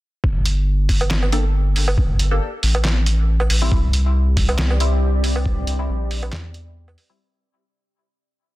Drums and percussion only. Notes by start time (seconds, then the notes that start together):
0.24 kick
0.46 closed hi-hat
0.89 kick, open hi-hat
1.01 closed hi-hat, low woodblock
1.11 snare, clap
1.23 low woodblock
1.32 closed hi-hat
1.76 open hi-hat
1.88 low woodblock
1.98 kick
2.19 closed hi-hat
2.63 open hi-hat
2.75 closed hi-hat, low woodblock
2.85 snare, clap
3.06 closed hi-hat
3.40 low woodblock
3.50 open hi-hat
3.72 kick
3.93 closed hi-hat
4.37 kick, open hi-hat
4.49 closed hi-hat, low woodblock
4.59 snare, clap
4.70 low woodblock
4.80 closed hi-hat
5.24 open hi-hat
5.36 low woodblock
5.46 kick
5.67 closed hi-hat
6.11 open hi-hat
6.23 closed hi-hat, low woodblock
6.33 snare, clap
6.54 closed hi-hat
6.88 low woodblock
6.98 open hi-hat